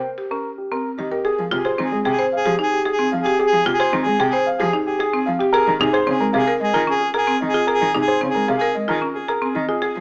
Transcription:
0.18 marimba G4
0.31 marimba C#4, grand piano A#4
0.58 grand piano G4
0.71 marimba C4, grand piano A#4
0.98 cello D#3, marimba G4, grand piano D#5
1.11 grand piano G4, marimba A#4
1.25 marimba G#4, grand piano G#4, soprano saxophone G#4
1.39 cello F3
1.51 cello C3, marimba F4, grand piano G4, soprano saxophone G#4
1.65 marimba G#4, grand piano C5
1.78 cello D#3, marimba C4, soprano saxophone G#4
1.92 cello G#3, grand piano G#4
2.05 cello C3, marimba G#4, soprano saxophone G#4, grand piano G5
2.19 marimba C5
2.32 grand piano F5
2.37 soprano saxophone G#4
2.46 cello F3, marimba G4, grand piano G#4
2.59 marimba D#4, soprano saxophone G#4
2.72 grand piano G4
2.85 grand piano G#4, marimba G#4
2.92 soprano saxophone G#4
2.99 marimba C4
3.12 cello F3, grand piano F5
3.20 soprano saxophone G#4
3.25 grand piano G4, marimba G4
3.39 grand piano G#4, marimba G#4
3.47 soprano saxophone G#4
3.52 cello F3
3.65 cello C3, marimba F4, grand piano G4
3.74 soprano saxophone G#4
3.80 marimba G#4, grand piano C5
3.93 cello D#3, marimba C4
4.01 soprano saxophone G#4
4.06 cello G#3, grand piano G#4
4.19 cello C3, marimba G#4, grand piano G5
4.29 soprano saxophone G#4, marimba C5
4.46 grand piano F5
4.57 cello F3, marimba G4, soprano saxophone G#4, grand piano G#4
4.73 marimba D#4
4.85 grand piano G4, soprano saxophone G#4
4.99 grand piano G#4, marimba G#4
5.12 marimba C4, soprano saxophone G#4
5.26 cello F3, grand piano F5
5.39 grand piano G4, marimba G4
5.53 soprano saxophone G#4, marimba G#4, grand piano A#4
5.67 cello D#3
5.80 cello C3, marimba D#4, grand piano G#4, soprano saxophone G#4
5.93 marimba G#4, grand piano C5
6.06 cello C#3, marimba C4, soprano saxophone G#4
6.20 cello G#3, grand piano A#4
6.33 cello C3, marimba G#4, soprano saxophone G#4, grand piano F5
6.47 marimba A#4
6.60 cello G#3, soprano saxophone G#4, grand piano D#5
6.74 cello D#3, marimba F4, grand piano A#4
6.87 marimba C#4, soprano saxophone G#4
7.00 grand piano G#4
7.14 marimba G#4, soprano saxophone G#4, grand piano A#4
7.27 marimba C4
7.41 cello D#3, grand piano D#5
7.47 soprano saxophone G#4
7.54 marimba F4, grand piano G#4
7.67 marimba G#4, grand piano A#4
7.73 soprano saxophone G#4
7.81 cello D#3
7.94 cello C3, marimba D#4, grand piano G#4
8.01 soprano saxophone G#4
8.08 marimba G#4, grand piano C5
8.21 cello C#3, marimba C4
8.29 soprano saxophone G#4
8.34 cello G#3, grand piano A#4
8.48 cello C3, marimba G#4, grand piano F5
8.56 soprano saxophone G#4
8.61 marimba A#4
8.75 cello G#3, grand piano D#5
8.85 cello D#3, marimba F4, soprano saxophone G#4, grand piano A#4
9.02 marimba C#4
9.13 soprano saxophone G#4, grand piano G#4
9.28 marimba G#4, grand piano A#4
9.40 marimba C4, soprano saxophone G#4
9.55 cello D#3, grand piano D#5
9.69 marimba F4, grand piano G#4
9.82 marimba G#4, soprano saxophone G#4, grand piano G#4
9.95 cello F3

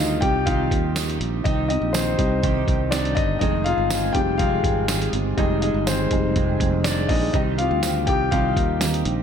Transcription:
Already playing: fingered electric bass D2, steel-string acoustic guitar D#3 C4, grand piano G3 C4 D#4 F4 D#5 F5
0.00 steel-string acoustic guitar D#4 G4
0.21 fingered electric bass C2, steel-string acoustic guitar C4 D#4 G4, grand piano G4 G5, kick, closed hi-hat
0.46 steel-string acoustic guitar C3 D#3 C4 D#4 G4, grand piano F4 F5, kick, closed hi-hat
0.71 fingered electric bass D#2, kick, closed hi-hat
0.96 steel-string acoustic guitar D#3 C4 D#4 G4, snare, closed hi-hat, tambourine
1.09 closed hi-hat
1.21 fingered electric bass A#1, closed hi-hat
1.44 fingered electric bass C2, steel-string acoustic guitar C3 D#3 C4 D#4 G4, grand piano D#4 D#5, kick, closed hi-hat
1.68 steel-string acoustic guitar C4 D#4 G4, grand piano D#4 D#5, closed hi-hat
1.82 fingered electric bass A#1
1.93 steel-string acoustic guitar D#3 C4 D#4 G4, grand piano C4 C5, snare, closed hi-hat, tambourine
2.18 fingered electric bass C2, grand piano G3 C4 D#4, steel-string acoustic guitar C4 D#4 G4, kick, closed hi-hat
2.42 steel-string acoustic guitar C3 D#3 C4 D#4 G4, kick, closed hi-hat
2.68 fingered electric bass C2, kick, closed hi-hat
2.91 steel-string acoustic guitar D#3 C4 D#4 G4, grand piano D4 D5, snare, closed hi-hat, tambourine
3.05 closed hi-hat
3.15 fingered electric bass G1, grand piano D#4 D#5, kick, closed hi-hat
3.39 fingered electric bass F1, steel-string acoustic guitar F2 C3 D#3 G#3 C4 G#4, grand piano D#4 D#5, kick, closed hi-hat
3.64 steel-string acoustic guitar D#3 G#3 C4 G#4, grand piano F4 F5, closed hi-hat
3.78 fingered electric bass G1
3.90 steel-string acoustic guitar D#3 G#3 C4 G#4, snare, closed hi-hat, tambourine
4.13 fingered electric bass F1, steel-string acoustic guitar D#3 G#3 C4 G#4, grand piano G3 G#3 D#4 G4 G5, kick, closed hi-hat
4.38 steel-string acoustic guitar F2 C3 D#3 G#3 C4 G#4, grand piano F4 F5, kick, closed hi-hat
4.64 fingered electric bass G#1, kick, closed hi-hat
4.88 steel-string acoustic guitar D#3 G#3 C4 G#4, snare, closed hi-hat, tambourine
5.02 closed hi-hat
5.12 fingered electric bass G1, steel-string acoustic guitar D#3 G#3 C4 G#4, closed hi-hat
5.37 fingered electric bass F1, steel-string acoustic guitar F2 C3 D#3 G#3 C4 G#4, grand piano G3 G#3 D#4 D#5, kick, closed hi-hat
5.62 steel-string acoustic guitar D#3 G#3 C4 G#4, grand piano D#4 D#5, closed hi-hat
5.74 fingered electric bass G1
5.86 steel-string acoustic guitar D#3 G#3 C4 G#4, grand piano C4 C5, snare, closed hi-hat, tambourine
6.11 fingered electric bass F1, steel-string acoustic guitar D#3 G#3 C4 G#4, grand piano G3 G#3 D#4, kick, closed hi-hat
6.36 steel-string acoustic guitar F2 C3 D#3 G#3 C4 G#4, kick, closed hi-hat
6.60 fingered electric bass F1, kick, closed hi-hat
6.84 steel-string acoustic guitar D#3 G#3 C4 G#4, grand piano D4 D5, snare, closed hi-hat, tambourine
7.08 fingered electric bass A#1, steel-string acoustic guitar D#3 G#3 C4 G#4, grand piano D#4 D#5, kick, snare, open hi-hat
7.33 fingered electric bass C2, steel-string acoustic guitar C3 D#3 C4 D#4 G4, grand piano G3 C4 D#4 D#5, kick, closed hi-hat
7.58 steel-string acoustic guitar C4 D#4 G4, grand piano F4 F5, closed hi-hat
7.71 fingered electric bass D2
7.83 steel-string acoustic guitar D#3 C4 D#4 G4, snare, closed hi-hat, tambourine
8.07 fingered electric bass C2, grand piano G4 G5, kick, closed hi-hat
8.31 steel-string acoustic guitar C3 D#3 C4 D#4 G4, grand piano G3 C4 D#4 F4 F5, kick, closed hi-hat
8.57 fingered electric bass D#2, kick, closed hi-hat
8.81 steel-string acoustic guitar D#3 C4 D#4 G4, snare, closed hi-hat, tambourine
8.94 closed hi-hat
9.05 fingered electric bass A#1, closed hi-hat

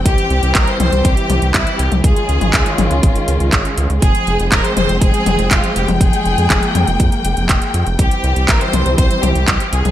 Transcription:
Already playing: string section C4 G5
0.05 analog synth bass C2, string section E3 G3, violin section G4, kick, closed hi-hat
0.18 closed hi-hat
0.30 analog synth bass C2, closed hi-hat
0.43 analog synth bass C2, closed hi-hat
0.55 analog synth bass A#1, violin section A#4, kick, clap, closed hi-hat
0.68 violin section C5, closed hi-hat
0.80 analog synth bass C2, violin section C5, closed hi-hat, high tom
0.92 analog synth bass C2, closed hi-hat
1.05 analog synth bass C2, violin section G4, kick, closed hi-hat
1.17 closed hi-hat
1.30 analog synth bass C2, closed hi-hat, high tom
1.42 analog synth bass C2, closed hi-hat
1.54 analog synth bass C2, violin section E4, kick, clap, closed hi-hat
1.67 closed hi-hat
1.79 analog synth bass C2, violin section G4, closed hi-hat
1.92 analog synth bass C2, closed hi-hat, high tom
2.04 analog synth bass C#2, string section D#3 G#3 C#4 F4, violin section G#4, kick, closed hi-hat
2.16 closed hi-hat
2.29 analog synth bass C#2, closed hi-hat
2.41 analog synth bass G#1, closed hi-hat, high tom
2.54 analog synth bass C#2, kick, clap, closed hi-hat
2.66 closed hi-hat
2.78 analog synth bass G#1, closed hi-hat, high tom
2.91 analog synth bass C#2, closed hi-hat
3.03 analog synth bass G#1, kick, closed hi-hat
3.16 closed hi-hat
3.28 analog synth bass C#2, closed hi-hat
3.40 analog synth bass C#2, closed hi-hat
3.53 analog synth bass G#1, kick, clap, closed hi-hat
3.65 closed hi-hat
3.78 analog synth bass C#2, closed hi-hat
3.90 analog synth bass C#2, closed hi-hat
4.02 analog synth bass F1, string section F3 C4 G5, violin section G#4, kick, closed hi-hat
4.15 closed hi-hat
4.27 analog synth bass F1, closed hi-hat
4.40 analog synth bass F1, closed hi-hat
4.52 analog synth bass D#1, violin section A#4, kick, clap, closed hi-hat
4.64 violin section C5, closed hi-hat
4.76 analog synth bass F1, violin section C5, closed hi-hat, high tom
4.89 analog synth bass F1, closed hi-hat
5.01 analog synth bass F1, violin section G#4, kick, closed hi-hat
5.14 closed hi-hat
5.26 analog synth bass F1, closed hi-hat, high tom
5.39 analog synth bass F1, closed hi-hat
5.51 analog synth bass F1, violin section F4, kick, clap, closed hi-hat
5.64 closed hi-hat
5.76 analog synth bass F1, violin section G4, closed hi-hat
5.88 analog synth bass F1, closed hi-hat, high tom
6.00 analog synth bass F1, string section A#3, violin section G#4, kick, closed hi-hat
6.13 closed hi-hat
6.25 analog synth bass F1, closed hi-hat
6.38 analog synth bass F2, closed hi-hat
6.50 analog synth bass F1, kick, clap, closed hi-hat
6.63 closed hi-hat
6.75 analog synth bass F2, closed hi-hat, high tom
6.87 analog synth bass F1, closed hi-hat
7.00 analog synth bass F2, kick, closed hi-hat
7.12 closed hi-hat
7.25 analog synth bass F1, closed hi-hat
7.37 analog synth bass F1, closed hi-hat
7.49 analog synth bass F1, kick, clap, closed hi-hat
7.62 closed hi-hat
7.74 analog synth bass F2, closed hi-hat
7.86 analog synth bass F1, closed hi-hat
7.99 analog synth bass C2, string section E3 G3 C4, violin section G4, kick, closed hi-hat
8.11 closed hi-hat
8.24 analog synth bass C2, closed hi-hat
8.36 analog synth bass C2, closed hi-hat
8.49 analog synth bass A#1, violin section A#4, kick, clap, closed hi-hat
8.61 violin section C5, closed hi-hat
8.73 analog synth bass C2, closed hi-hat, high tom
8.86 analog synth bass C2, closed hi-hat
8.98 analog synth bass C2, violin section C5, kick, closed hi-hat
9.11 closed hi-hat
9.23 analog synth bass C2, violin section G4, closed hi-hat, high tom
9.35 analog synth bass C2, closed hi-hat
9.48 analog synth bass C2, kick, clap, closed hi-hat
9.60 closed hi-hat
9.73 analog synth bass C2, violin section G#4, closed hi-hat
9.85 analog synth bass C2, closed hi-hat, high tom

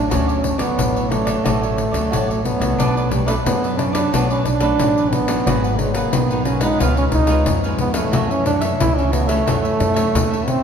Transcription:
0.10 upright bass D2, nylon-string guitar D3 F#3 A3 C#4, trombone C#4, cavaquinho F#4 A4 C#5 D5, pandeiro
0.27 cavaquinho A4 C#5 D5, pandeiro
0.42 muted cavaquinho stroke, pandeiro
0.58 upright bass D2, nylon-string guitar F#3 A3, trombone B3, cavaquinho A4 C#5 D5, pandeiro
0.77 upright bass A1, nylon-string guitar A2, pandeiro
0.95 cavaquinho A4 C#5 D5, pandeiro
1.10 nylon-string guitar F#3 A3 C#4, trombone A3, cavaquinho F#4 A4 C#5 D5, pandeiro
1.25 cavaquinho A4 C#5 D5, pandeiro
1.44 upright bass A1, nylon-string guitar D3 F#3 A3 C#4, cavaquinho F#4 A4 C#5 D5, pandeiro
1.62 cavaquinho A4 C#5 D5, pandeiro
1.76 muted cavaquinho stroke, pandeiro
1.91 upright bass D2, nylon-string guitar F#3 A3 C#4, cavaquinho A4 C#5 D5, pandeiro
2.11 upright bass A1, nylon-string guitar A2, cavaquinho F#4 A4 C#5 D5, pandeiro
2.28 cavaquinho A4 C#5 D5, pandeiro
2.44 nylon-string guitar F#3 A3 C#4, trombone B3, pandeiro
2.59 upright bass C2, cavaquinho A4 C#5 D5, pandeiro
2.78 upright bass B1, nylon-string guitar B2 F#3 A3 D4, cavaquinho D4 A4 B4 D5, pandeiro
2.96 cavaquinho A4 B4 D5, pandeiro
3.11 nylon-string guitar F#3 A3 D4, trombone G3, muted cavaquinho stroke, pandeiro
3.26 trombone A3, cavaquinho A4 B4 D5, pandeiro
3.46 upright bass F#2, nylon-string guitar F#2 F#3 A3 D4, trombone B3, pandeiro
3.63 cavaquinho A4 B4 D5, pandeiro
3.77 trombone C#4, cavaquinho D4 A4 B4 D5, pandeiro
3.93 trombone D4, cavaquinho A4 B4 D5, pandeiro
4.12 upright bass B1, nylon-string guitar B2 F#3 A3 D4, trombone B3, cavaquinho D4 A4 B4 D5, pandeiro
4.30 trombone C#4, cavaquinho A4 B4 D5, pandeiro
4.45 upright bass B1, trombone D4, muted cavaquinho stroke, pandeiro
4.60 nylon-string guitar F#3 A3 D4, cavaquinho A4 B4 D5, pandeiro
4.79 upright bass A1, nylon-string guitar F#2, pandeiro
4.97 cavaquinho A4 B4 D5, pandeiro
5.12 trombone B3, pandeiro
5.28 nylon-string guitar F#3 B3 D#4, cavaquinho A4 B4 D5, pandeiro
5.46 upright bass G#1, nylon-string guitar G#2, cavaquinho F#4 G#4 B4 F#5, pandeiro
5.64 cavaquinho G#4 B4 F#5, pandeiro
5.78 nylon-string guitar F#3 B3 D#4, trombone G#3, muted cavaquinho stroke, pandeiro
5.94 trombone A#3, cavaquinho G#4 B4 F#5, pandeiro
6.13 upright bass B1, nylon-string guitar D#3, trombone B3, pandeiro
6.30 nylon-string guitar F#3 B3 D#4, cavaquinho G#4 B4 F#5, pandeiro
6.45 trombone C#4, cavaquinho F#4 G#4 B4 F#5, pandeiro
6.60 nylon-string guitar G#3 B3 F4, trombone D#4, cavaquinho G#4 B4 F#5, pandeiro
6.79 upright bass C#2, nylon-string guitar C#3, trombone B3, cavaquinho F4 B4 C#5 F5, pandeiro
6.97 trombone C#4, cavaquinho B4 C#5 F5, pandeiro
7.12 upright bass C#2, trombone D#4, muted cavaquinho stroke, pandeiro
7.27 nylon-string guitar G#3 B3 F4, cavaquinho B4 C#5 F5, pandeiro
7.46 upright bass F2, nylon-string guitar G#2, pandeiro
7.64 nylon-string guitar G#3 B3 F4, cavaquinho B4 C#5 F5, pandeiro
7.79 trombone B3, pandeiro
7.94 nylon-string guitar E3 A3 C#4, trombone A3, cavaquinho B4 C#5 F5, pandeiro
8.12 upright bass F#2, nylon-string guitar F#2, cavaquinho F#4 A4 C#5 E5, pandeiro
8.30 trombone C#4, cavaquinho A4 C#5 E5, pandeiro
8.45 nylon-string guitar E3 A3 C#4, trombone D4, muted cavaquinho stroke, pandeiro
8.61 cavaquinho A4 C#5 E5, pandeiro
8.80 upright bass C#2, nylon-string guitar C#3 E3 A3 C#4, trombone E4, pandeiro
8.97 trombone C#4, cavaquinho A4 C#5 E5, pandeiro
9.12 trombone B3, cavaquinho F#4 A4 C#5 E5, pandeiro
9.28 nylon-string guitar E3 A3 C#4, trombone A3, cavaquinho A4 C#5 E5, pandeiro
9.46 upright bass F#2, nylon-string guitar F#2 E3 A3 C#4, cavaquinho F#4 A4 C#5 E5, pandeiro
9.64 cavaquinho A4 C#5 E5, pandeiro
9.79 upright bass F#2, muted cavaquinho stroke, pandeiro
9.94 nylon-string guitar A3 C#4, cavaquinho A4 C#5 E5, pandeiro
10.14 upright bass D#2, nylon-string guitar C#3, pandeiro
10.31 cavaquinho A4 C#5 E5, pandeiro
10.47 trombone C4, pandeiro

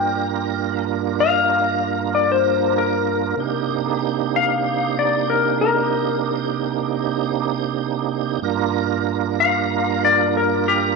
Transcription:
Already playing: tonewheel organ G2 A#3 D4 F4 A#4, electric slide guitar G5
1.20 electric slide guitar F5
2.15 electric slide guitar D5
2.32 electric slide guitar C5
2.78 electric slide guitar A#4
3.37 tonewheel organ C3 A#3 D4 D#4 G4
4.36 electric slide guitar F5
4.99 electric slide guitar D5
5.30 electric slide guitar A#4
5.61 electric slide guitar A#4
8.42 tonewheel organ G2 A#3 D4 F4 A#4
9.40 electric slide guitar F5
10.05 electric slide guitar D5
10.37 electric slide guitar A#4
10.68 electric slide guitar G4

